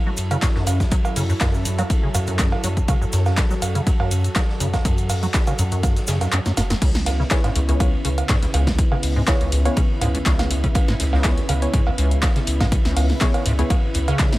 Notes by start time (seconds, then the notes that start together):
Already playing: F#3 E4 A4
0.06 F#3
0.17 F#2, open hi-hat, ride, cabasa
0.31 C#3, closed hi-hat, cowbell, cabasa
0.42 F#2, kick, snare, clap, closed hi-hat, ride, cabasa
0.55 F#2, snare
0.66 F#2, open hi-hat, ride, cowbell, cabasa
0.80 G#2, kick, snare, closed hi-hat, cabasa
0.91 F#3, kick, closed hi-hat, ride, cabasa
1.05 cowbell, cabasa
1.16 F#2 C#3, open hi-hat, cabasa
1.29 F#2, ride, cabasa
1.40 F#2, kick, snare, clap, closed hi-hat, ride, cowbell, cabasa
1.54 cabasa
1.65 F#2 G#2, open hi-hat, ride, cabasa
1.78 F#3, closed hi-hat, cowbell, cabasa
1.90 kick, closed hi-hat, ride, cabasa
2.03 C#3
2.15 F#2, open hi-hat, ride, cowbell, cabasa
2.27 F#2, closed hi-hat, ride, cabasa
2.39 kick, snare, clap, closed hi-hat, ride, cabasa
2.52 G#2, ride, cowbell
2.64 F#2 F#3, open hi-hat, ride, cabasa
2.77 kick, closed hi-hat, cabasa
2.88 C#3 F#4, kick, closed hi-hat, ride, cowbell, cabasa
3.01 F#2, cabasa
3.12 F#2, snare, open hi-hat, ride, cabasa
3.26 snare, cowbell, cabasa
3.37 G#2, kick, snare, clap, closed hi-hat, ride, cabasa
3.51 F#3, snare, cabasa
3.62 F#2, open hi-hat, ride, cowbell, cabasa
3.75 C#3, closed hi-hat, ride, cabasa
3.87 F#2, kick, closed hi-hat, ride, cabasa
4.00 F#2, cowbell
4.11 F#2, open hi-hat, ride, cabasa
4.24 G#2, closed hi-hat, cabasa
4.36 F#3, kick, snare, clap, closed hi-hat, ride, cowbell, cabasa
4.49 snare
4.60 F#2 C#3, open hi-hat, ride, cabasa
4.73 F#2, kick, snare, closed hi-hat, cowbell, cabasa
4.85 F#2, kick, closed hi-hat, ride, cabasa
4.98 closed hi-hat, cabasa
5.09 F#2 G#2, open hi-hat, cowbell, cabasa
5.23 F#3, closed hi-hat, ride, cabasa
5.34 kick, snare, clap, closed hi-hat, ride, cabasa
5.47 C#3, closed hi-hat, cowbell, cabasa
5.59 F#2, open hi-hat, ride, cabasa
5.72 F#2, closed hi-hat, cabasa
5.83 kick, snare, closed hi-hat, ride, cowbell, cabasa
5.96 G#2, snare, closed hi-hat, cabasa
6.07 F#2 C#3, snare, open hi-hat, ride, cabasa
6.21 F#2, snare, closed hi-hat, cowbell, cabasa
6.32 F#2, clap, closed hi-hat, ride, cabasa
6.46 F#2, snare, ride, cabasa
6.57 F#1 F#2, snare, open hi-hat, ride, cowbell, cabasa
6.70 F#2, snare, closed hi-hat, cabasa
6.82 C#2 C#3 B3 E4, kick, closed hi-hat, crash, ride
6.95 snare
7.06 C#2 D#2, snare, open hi-hat, ride, cowbell
7.19 C#3, snare
7.30 B3 E4 G#4 C#5, kick, snare, clap, closed hi-hat, ride
7.44 G#2, snare, closed hi-hat, cowbell
7.55 C#2, open hi-hat, ride
7.69 C#2 B3 E4 G#4 C#5, closed hi-hat, ride
7.80 kick, closed hi-hat, ride, cowbell
7.93 D#2
8.05 C#2 C#3, open hi-hat, ride
8.18 closed hi-hat, cowbell
8.29 G#2, kick, snare, clap, closed hi-hat, ride
8.42 C#2, snare, closed hi-hat
8.54 C#2, open hi-hat, ride, cowbell
8.67 kick, snare, closed hi-hat
8.78 D#2, kick, closed hi-hat, ride
8.92 C#3, cowbell
9.03 C#2, open hi-hat
9.16 G#2, ride
9.28 C#2 B3 E4 G#4 C#5, kick, snare, clap, closed hi-hat, ride, cowbell
9.41 C#2, closed hi-hat
9.52 C#2, open hi-hat, ride
9.65 D#2 B3 E4 G#4 C#5, closed hi-hat, cowbell
9.76 C#3, kick, closed hi-hat, ride
10.01 C#2 G#2, open hi-hat, ride, cowbell
10.15 C#2, closed hi-hat, ride
10.26 C#2, kick, snare, clap, closed hi-hat, ride
10.39 snare, closed hi-hat, ride, cowbell
10.51 C#2 D#2, open hi-hat, ride
10.64 C#3, kick, closed hi-hat
10.75 kick, closed hi-hat, ride, cowbell
10.88 G#2, snare
11.00 C#2, snare, open hi-hat, ride
11.13 C#2, snare, cowbell
11.24 B3 E4 G#4 C#5, kick, snare, clap, closed hi-hat, ride
11.37 D#2, snare, closed hi-hat
11.49 C#2 C#3, open hi-hat, ride, cowbell
11.62 B3 E4 G#4 C#5, closed hi-hat, ride
11.73 G#2, kick, closed hi-hat, ride
11.87 C#2, cowbell
11.98 C#2, open hi-hat, ride
12.11 closed hi-hat
12.23 D#2, kick, snare, clap, closed hi-hat, ride, cowbell
12.36 C#3, snare, closed hi-hat
12.47 C#2, open hi-hat, ride
12.60 G#2, kick, snare, closed hi-hat, cowbell
12.72 C#2, kick, closed hi-hat, ride
12.85 C#2, snare
12.96 C#2, open hi-hat, cowbell
13.09 D#2, snare, ride
13.21 C#3 B3 E4 G#4 C#5, kick, snare, clap, closed hi-hat, ride
13.34 closed hi-hat, cowbell
13.45 C#2 G#2, open hi-hat, ride
13.59 C#2 B3 E4 G#4 C#5, closed hi-hat
13.70 C#2, kick, closed hi-hat, ride, cowbell
13.94 C#2 E2, open hi-hat, ride
14.08 C#3, closed hi-hat, ride, cowbell
14.19 kick, snare, clap, closed hi-hat, ride
14.32 F#2, snare, closed hi-hat, ride